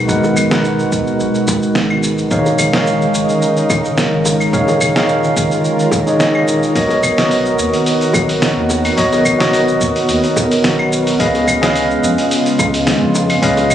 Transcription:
Already playing: analog synth pad B2 G#3 F#4, tine electric piano G#3 D#4 A#4 B4 F#5
0.08 sub bass G#1, tine electric piano G#3 D#4 A#4 B4 F#5, kick, shaker
0.24 high bongo, shaker
0.36 kick, claves, shaker
0.50 tine electric piano G#3 D#4 A#4 B4 F#5, snare, shaker
0.64 shaker
0.79 shaker
0.92 sub bass C#2, kick, shaker
1.07 shaker
1.20 sub bass B1, shaker
1.35 shaker
1.47 kick, high bongo, shaker
1.62 shaker
1.75 sub bass G#1, snare, shaker
1.90 claves
2.03 shaker
2.18 shaker
2.30 sub bass D#1, analog synth pad C#3 D#4 A#4, tine electric piano D#3 D#4 G#4 C#5 F5, kick, shaker
2.46 high bongo, shaker
2.59 kick, claves, shaker
2.72 tine electric piano D#3 D#4 G#4 C#5 F5, snare, shaker
2.87 shaker
3.01 shaker
3.14 sub bass G#1, shaker
3.29 shaker
3.42 shaker
3.57 shaker
3.70 sub bass D#1, kick, high bongo, claves, shaker
3.85 shaker
3.98 snare, shaker
4.13 sub bass G#1
4.25 high bongo, shaker
4.40 claves, shaker
4.52 sub bass D#1, tine electric piano D#3 D#4 G#4 C#5 F5, analog synth pad F4, kick, shaker
4.68 high bongo, shaker
4.81 kick, claves, shaker
4.94 tine electric piano D#3 D#4 G#4 C#5 F5, snare, shaker
5.09 shaker
5.24 shaker
5.37 sub bass G#1, kick, shaker
5.51 shaker
5.64 shaker
5.79 shaker
5.91 kick, high bongo, shaker
6.06 tine electric piano D#3 D#4 G#4 C#5 D#5, shaker
6.19 tine electric piano D#3 D#4 G#4 C#5 D#5, snare, shaker
6.35 claves
6.48 sub bass D#1, shaker
6.63 shaker
6.75 sub bass B1, analog synth pad D#3 B3 F#4, tine electric piano B3 F#4 A#4 C#5 D#5, kick, open hi-hat, shaker
6.89 open hi-hat, high bongo, shaker
7.03 kick, claves, shaker
7.17 tine electric piano B3 F#4 A#4 C#5 D#5, snare, open hi-hat, shaker
7.31 open hi-hat, shaker
7.46 shaker
7.59 sub bass D#2, shaker
7.74 open hi-hat, shaker
7.86 open hi-hat, shaker
8.01 open hi-hat, shaker
8.14 sub bass B1, kick, high bongo, claves, shaker
8.29 open hi-hat, shaker
8.42 snare, open hi-hat, shaker
8.57 sub bass D#2
8.70 high bongo, shaker
8.85 open hi-hat, claves, shaker
8.97 sub bass B1, tine electric piano B3 F#4 A#4 C#5 D#5, kick, open hi-hat, shaker
9.12 open hi-hat, high bongo, shaker
9.25 kick, claves, shaker
9.39 tine electric piano B3 F#4 A#4 C#5 D#5, snare, open hi-hat, shaker
9.53 open hi-hat, shaker
9.68 shaker
9.81 sub bass D#2, kick, shaker
9.96 open hi-hat, shaker
10.09 sub bass D#2, open hi-hat, shaker
10.24 open hi-hat, shaker
10.36 kick, high bongo, shaker
10.51 open hi-hat, shaker
10.64 sub bass B1, snare, open hi-hat, shaker
10.79 claves
10.92 shaker
11.07 open hi-hat, shaker
11.19 sub bass C#2, analog synth pad C#3 G#3 F4, tine electric piano C#4 G#4 B4 D#5 F5, kick, open hi-hat, shaker
11.35 open hi-hat, high bongo, shaker
11.48 kick, claves, shaker
11.61 tine electric piano C#4 G#4 B4 D#5 F5, snare, open hi-hat, shaker
11.75 open hi-hat, shaker
11.91 shaker
12.03 sub bass F2, shaker
12.18 open hi-hat, shaker
12.31 open hi-hat, shaker
12.46 open hi-hat, shaker
12.59 sub bass C#2, kick, high bongo, claves, shaker
12.74 open hi-hat, shaker
12.87 snare, open hi-hat, shaker
13.01 sub bass F2
13.15 high bongo, shaker
13.30 open hi-hat, claves, shaker
13.42 sub bass C#2, tine electric piano C#4 G#4 B4 D#5 F5, analog synth pad C#4, kick, open hi-hat, shaker
13.57 open hi-hat, high bongo, shaker
13.70 kick, claves, shaker

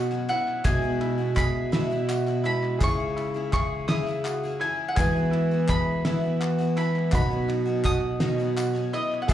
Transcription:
Already playing: felt piano B1 B2 C#4 D#4 F#4 B4 D#5, bass clarinet B2, twelve-string acoustic guitar F#3 B3 C#4, upright piano F#4, mandolin C#6
0.11 twelve-string acoustic guitar F#3 B3 C#4 F#4, clap
0.29 twelve-string acoustic guitar F#3 B3 C#4 F#4, upright piano E4, mandolin F#5, ride, tambourine
0.48 clap
0.64 felt piano B1 B2 G#3 E4 F#4 B4 E5, twelve-string acoustic guitar B2 G#3 B3 E4 F#4, bass clarinet B2, upright piano G#4, mandolin G#5, kick, clap, ride, tambourine
0.82 twelve-string acoustic guitar B3 E4 F#4
1.01 upright piano E4, clap, ride
1.18 twelve-string acoustic guitar B3 E4 F#4
1.35 twelve-string acoustic guitar G#3 B3 E4 F#4, upright piano G#4, mandolin B5, kick, clap, ride, tambourine
1.72 twelve-string acoustic guitar B2 G#3 B3 E4 F#4, bass clarinet B2, upright piano E4, snare, ride
1.90 twelve-string acoustic guitar B3 E4 F#4, tambourine
2.08 upright piano F#4, clap, ride, tambourine
2.27 twelve-string acoustic guitar B3 E4 F#4, clap, tambourine
2.44 twelve-string acoustic guitar G#3 B3 E4 F#4, upright piano E4, mandolin B5, ride, tambourine
2.63 clap
2.79 felt piano C#2 C#3 G#3 C#4 E4 C#5 E5, twelve-string acoustic guitar C#3 E3 C#4 E4 G#4, bass clarinet C#3, upright piano G#4, kick, clap, ride, tambourine
2.84 mandolin C#6
2.99 twelve-string acoustic guitar C#4 E4 G#4
3.16 upright piano E4, clap, ride, tambourine
3.34 twelve-string acoustic guitar C#4 E4 G#4
3.52 twelve-string acoustic guitar E3 C#4 E4 G#4, upright piano G#4, mandolin C#6, kick, clap, ride
3.88 twelve-string acoustic guitar C#3 E3 C#4 E4 G#4, bass clarinet C#3, upright piano E4, mandolin D#6, snare, clap, ride
4.07 twelve-string acoustic guitar C#4 E4 G#4, clap, tambourine
4.24 upright piano F#4, clap, ride, tambourine
4.43 twelve-string acoustic guitar C#4 E4 G#4, tambourine
4.60 twelve-string acoustic guitar E3 C#4 E4, upright piano E4, mandolin G#5, ride
4.65 twelve-string acoustic guitar G#4
4.88 mandolin F#5
4.95 felt piano E2 E3 G#3 E4 F#4 B4 E5, bass clarinet E3, twelve-string acoustic guitar E3 G#3 B3, upright piano G#4, mandolin G#5, kick, clap, ride, tambourine
5.00 twelve-string acoustic guitar E4 F#4
5.16 twelve-string acoustic guitar B3 E4 F#4
5.31 upright piano E4, clap, ride
5.51 twelve-string acoustic guitar B3 E4 F#4
5.68 twelve-string acoustic guitar G#3 B3 E4 F#4, upright piano G#4, mandolin B5, kick, clap, ride, tambourine
6.05 twelve-string acoustic guitar E3 G#3 B3 E4 F#4, bass clarinet E3, upright piano E4, snare, ride
6.23 twelve-string acoustic guitar B3 E4 F#4
6.40 upright piano F#4, clap, ride
6.59 twelve-string acoustic guitar B3 E4 F#4, clap, tambourine
6.77 twelve-string acoustic guitar G#3 B3 E4 F#4, upright piano E4, mandolin B5, ride, tambourine
6.96 clap
7.12 felt piano B1 B2 F#3 C#4 D#4 B4 D#5, twelve-string acoustic guitar B2 D#3 F#3 B3 C#4 F#4, bass clarinet B2, upright piano F#4, mandolin B5, kick, clap, ride, tambourine
7.30 twelve-string acoustic guitar F#3 B3 C#4 F#4
7.49 upright piano D#4, clap, ride
7.65 twelve-string acoustic guitar F#3 B3 C#4 F#4
7.84 twelve-string acoustic guitar F#3 B3 C#4 F#4, upright piano F#4, mandolin D#6, kick, clap, ride, tambourine
8.20 twelve-string acoustic guitar B2 D#3 F#3 B3 C#4 F#4, bass clarinet B2, upright piano D#4, snare, ride
8.38 twelve-string acoustic guitar F#3 B3 C#4 F#4, tambourine
8.57 upright piano F#4, clap, ride, tambourine
8.73 twelve-string acoustic guitar F#3 B3 C#4 F#4, clap, tambourine
8.93 twelve-string acoustic guitar F#3 B3 C#4 F#4, upright piano E4, mandolin D#5, ride, tambourine
9.12 clap
9.22 mandolin F#5
9.28 felt piano B1 B2 F#3 B3 E4 G#4 E5, bass clarinet B2, twelve-string acoustic guitar B2 G#3 B3 E4, upright piano G#4, kick, clap, ride, tambourine

